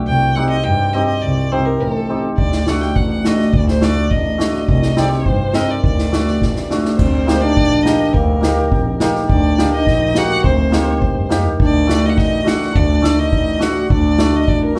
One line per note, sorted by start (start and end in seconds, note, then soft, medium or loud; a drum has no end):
0.07 0.42 C2 medium
0.07 0.37 G5 medium
0.35 0.50 C4 medium
0.35 0.51 D#4 medium
0.35 0.51 G4 medium
0.35 0.50 F#5 loud
0.50 0.66 D#5 medium
0.64 0.99 G2 loud
0.64 0.95 G5 medium
0.94 1.08 C4 medium
0.94 1.09 D#4 soft
0.94 1.09 G4 medium
0.94 1.07 D#5 medium
1.07 1.23 D#5 medium
1.22 1.57 C2 medium
1.22 1.54 D5 medium
1.52 1.66 C4 medium
1.52 1.66 D#4 medium
1.52 1.67 G4 medium
1.52 1.67 C5 medium
1.66 1.82 A#4 medium
1.80 2.15 A1 medium
1.80 2.24 A4 medium
2.09 2.24 C4 medium
2.09 2.24 D#4 medium
2.09 2.24 G4 medium
2.38 2.73 D2 medium
2.38 2.70 D5 medium
2.38 kick medium
2.52 snare medium
2.67 2.82 A3 medium
2.67 2.82 D4 medium
2.67 2.82 F#4 medium
2.67 2.83 F#5 medium
2.67 snare medium
2.81 2.97 G5 medium
2.81 snare soft
2.96 3.31 A1 medium
2.96 3.10 F#5 medium
2.96 kick medium
3.12 3.27 F#5 medium
3.25 3.39 A3 medium
3.25 3.40 D4 medium
3.25 3.40 F#4 medium
3.25 3.54 D#5 medium
3.25 snare medium
3.39 snare soft
3.53 3.88 D2 loud
3.53 3.68 D5 medium
3.53 kick medium
3.68 3.84 C5 medium
3.68 snare medium
3.81 3.96 A3 medium
3.81 3.97 D4 medium
3.81 3.97 F#4 medium
3.81 4.12 D5 medium
3.81 snare medium
4.10 4.46 A1 medium
4.10 4.68 D#5 medium
4.10 kick medium
4.38 4.53 A3 medium
4.38 4.54 D4 soft
4.38 4.54 F#4 medium
4.38 snare medium
4.54 snare soft
4.69 5.03 C2 medium
4.69 5.00 D#5 medium
4.69 kick medium
4.82 snare medium
4.96 5.12 C4 medium
4.96 5.11 D#4 medium
4.96 5.12 G4 medium
4.96 5.10 D5 medium
4.96 snare medium
5.09 5.56 C5 medium
5.09 snare soft
5.26 5.61 G2 medium
5.26 kick medium
5.54 5.69 C4 medium
5.54 5.69 D#4 medium
5.54 5.70 A#4 medium
5.54 5.72 D#5 medium
5.54 snare medium
5.71 5.85 D5 medium
5.84 6.18 D2 medium
5.84 6.67 D5 medium
5.84 kick medium
5.98 snare medium
6.12 6.27 A3 medium
6.12 6.27 D4 medium
6.12 6.28 F#4 medium
6.12 snare medium
6.27 snare soft
6.42 6.77 A1 medium
6.42 kick medium
6.42 snare soft
6.56 snare soft
6.70 6.85 A3 medium
6.70 6.85 D4 medium
6.70 6.86 F#4 medium
6.70 snare medium
6.85 snare soft
6.97 7.34 D2 medium
6.97 7.40 C4 medium
6.97 7.42 C5 medium
6.97 kick medium
6.97 crash medium
7.26 7.42 A#3 medium
7.26 7.42 D#4 medium
7.26 7.43 G4 medium
7.26 snare medium
7.41 8.16 D4 medium
7.41 7.84 D5 loud
7.57 7.92 A#1 medium
7.57 kick medium
7.83 7.99 A#3 medium
7.83 8.00 D#4 soft
7.83 8.00 G4 medium
7.83 8.15 D#5 medium
7.83 snare medium
8.14 8.49 D2 medium
8.14 8.73 A#3 medium
8.14 9.00 A#4 medium
8.14 kick medium
8.41 8.56 A#3 medium
8.41 8.57 D#4 medium
8.41 8.57 G4 medium
8.41 snare medium
8.71 9.06 A#1 medium
8.71 9.01 C4 medium
8.71 kick medium
9.00 9.15 A#3 medium
9.00 9.16 D#4 medium
9.00 9.16 G4 medium
9.00 snare medium
9.15 snare soft
9.23 9.33 D#4 soft
9.30 9.64 D2 medium
9.30 9.74 D4 medium
9.30 9.70 D5 medium
9.30 kick medium
9.58 9.73 A#3 medium
9.58 9.73 D#4 medium
9.58 9.73 G4 medium
9.58 snare medium
9.73 9.81 D#4 medium
9.73 10.19 D#5 medium
9.80 9.88 D4 medium
9.87 10.22 A#1 medium
9.87 10.16 D#4 medium
9.87 kick medium
9.87 snare soft
10.15 10.30 A#3 medium
10.15 10.30 D#4 soft
10.15 10.47 F#4 medium
10.15 10.31 G4 medium
10.15 10.45 F#5 loud
10.15 snare medium
10.30 snare soft
10.44 10.79 D2 medium
10.44 11.31 C4 medium
10.44 11.27 C5 medium
10.44 kick medium
10.71 10.87 A#3 medium
10.71 10.87 D#4 medium
10.71 10.88 G4 medium
10.71 snare medium
11.02 11.11 A#1 medium
11.02 kick medium
11.17 11.30 G2 medium
11.29 11.45 F#2 medium
11.29 11.45 A#3 medium
11.29 11.45 D#4 medium
11.29 11.46 G4 medium
11.29 snare medium
11.46 11.59 D#2 medium
11.59 11.94 D2 medium
11.59 12.02 D4 medium
11.59 kick medium
11.63 12.07 D5 medium
11.87 12.02 A3 medium
11.87 12.03 D4 medium
11.87 12.03 F#4 medium
11.87 snare medium
12.00 12.15 D#4 medium
12.05 12.11 D#5 medium
12.10 12.20 F#5 medium
12.15 12.52 A1 medium
12.15 12.43 D#4 medium
12.15 12.49 D#5 medium
12.15 kick medium
12.15 snare soft
12.43 12.60 A3 medium
12.43 12.60 D4 medium
12.43 12.75 F#4 medium
12.43 12.61 F#4 medium
12.43 snare medium
12.48 12.77 F#5 medium
12.62 snare soft
12.73 13.10 D2 loud
12.73 13.19 D4 medium
12.73 13.21 D5 medium
12.73 kick medium
13.02 13.17 A3 medium
13.02 13.17 D4 medium
13.02 13.18 A4 medium
13.02 snare medium
13.17 13.60 D#4 medium
13.17 13.64 D#5 medium
13.33 13.67 A1 medium
13.33 kick medium
13.59 13.75 A3 medium
13.59 13.75 D4 medium
13.59 13.75 F#4 medium
13.59 13.88 F#4 medium
13.59 13.91 F#5 medium
13.59 snare medium
13.89 14.25 D2 medium
13.89 14.44 D4 medium
13.89 14.37 D5 medium
13.89 kick medium
14.18 14.33 A3 medium
14.18 14.34 D4 medium
14.18 14.34 F#4 medium
14.18 snare medium
14.36 14.50 D#5 medium
14.46 14.79 A1 medium
14.46 14.75 D4 medium
14.46 14.63 D5 medium
14.46 kick medium
14.65 14.79 A#4 medium
14.73 14.79 A3 medium
14.73 14.79 C4 medium
14.73 14.79 D4 soft
14.73 14.79 F#4 medium